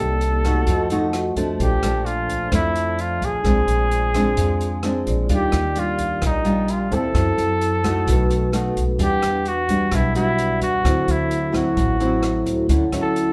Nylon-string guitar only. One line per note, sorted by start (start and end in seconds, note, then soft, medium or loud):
0.00 0.66 C3 medium
0.00 0.21 A#3 soft
0.00 0.22 D#4 soft
0.00 0.22 G4 medium
0.46 0.88 A3 medium
0.46 0.88 D#4 medium
0.46 0.88 F#4 medium
0.69 1.35 F3 medium
0.91 1.33 A3 medium
0.91 1.34 D#4 medium
0.91 1.34 F#4 medium
1.37 1.82 F3 medium
1.37 1.82 A3 medium
1.37 1.82 D4 medium
1.60 2.50 A#2 soft
1.83 2.48 F3 medium
1.83 2.49 A3 medium
1.83 2.49 D4 medium
2.51 3.42 F2 medium
2.51 3.40 F3 medium
2.51 3.41 A3 medium
2.51 3.41 D4 medium
3.44 4.34 A#2 medium
3.44 4.10 G#3 soft
3.44 4.10 C4 medium
3.44 4.10 D4 medium
4.15 4.80 G#3 medium
4.15 4.80 C4 medium
4.15 4.80 D4 medium
4.38 5.27 F3 medium
4.84 5.28 G#3 soft
4.84 5.28 C4 soft
4.84 5.28 D4 medium
5.30 6.20 D#3 medium
5.30 5.59 G3 soft
5.30 5.59 D4 soft
5.30 5.60 F4 soft
5.76 6.41 G3 medium
5.76 6.42 D4 medium
5.76 6.42 F4 medium
6.22 7.12 A#2 medium
6.45 6.87 G3 medium
6.45 6.88 D4 medium
6.45 6.88 F4 medium
6.91 7.80 C4 medium
6.91 7.80 E4 medium
6.91 7.81 A4 medium
7.15 7.83 F#3 medium
7.84 8.49 A3 medium
7.84 8.49 D#4 medium
7.84 8.50 F#4 medium
8.07 8.97 B2 medium
8.52 8.82 A3 medium
8.52 8.83 D#4 soft
8.52 8.83 F#4 medium
8.99 9.90 E3 medium
8.99 9.45 G3 medium
8.99 9.45 D4 medium
9.69 10.11 G3 medium
9.69 10.12 D4 medium
9.69 10.12 F#4 medium
9.92 10.82 B2 medium
10.15 10.80 G3 medium
10.15 10.81 D4 medium
10.15 10.81 F#4 medium
10.84 11.74 D3 soft
10.84 11.50 F#3 medium
10.84 11.50 C4 medium
10.84 11.50 E4 soft
11.52 11.96 F#3 medium
11.52 11.96 C4 medium
11.52 11.96 E4 medium
11.77 12.67 A2 medium
12.00 12.66 F#3 medium
12.00 12.66 C4 medium
12.00 12.66 E4 medium
12.70 13.33 D3 medium
12.70 12.83 F#3 medium
12.70 12.83 C#4 medium
12.70 12.83 E4 medium
12.93 13.33 F#3 medium
12.93 13.33 C#4 medium
12.93 13.33 E4 medium